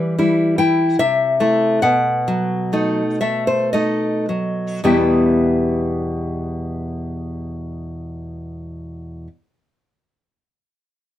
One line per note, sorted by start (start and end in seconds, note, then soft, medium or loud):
0.00 0.96 E3 soft
0.00 0.17 G3 soft
0.00 0.54 B4 medium
0.18 0.55 G3 soft
0.18 0.55 E4 soft
0.58 1.00 E4 soft
0.58 0.98 G5 medium
0.99 1.81 C3 soft
0.99 1.80 E5 medium
1.40 1.79 A3 soft
1.40 1.79 E4 soft
1.82 4.81 B2 soft
1.82 3.17 F#5 soft
2.28 3.02 F#3 soft
2.73 3.18 A3 soft
2.73 3.18 D#4 soft
3.21 3.73 A3 soft
3.21 3.47 E5 soft
3.47 3.72 C5 soft
3.73 4.25 A3 soft
3.73 4.25 D#4 soft
3.73 4.81 D#5 soft
4.29 4.84 F#3 soft
4.84 9.27 E2 soft
4.84 9.27 B2 soft
4.84 9.27 G3 soft
4.84 9.27 B3 soft
4.84 9.27 E4 soft
4.84 9.28 G4 soft
4.84 9.27 G5 soft